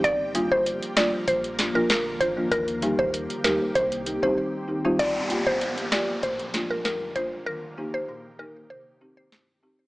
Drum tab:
HH |x-x-xxx-xxx-x-x-|xxx-xxx-xxx-----|x-x-xxx-xxx-x-x-|----------------|
SD |------o---o-o---|------o---------|------o---o-o---|------------o---|
BD |o--o----o-----o-|o--o----o--o----|o--o----o-----o-|----------------|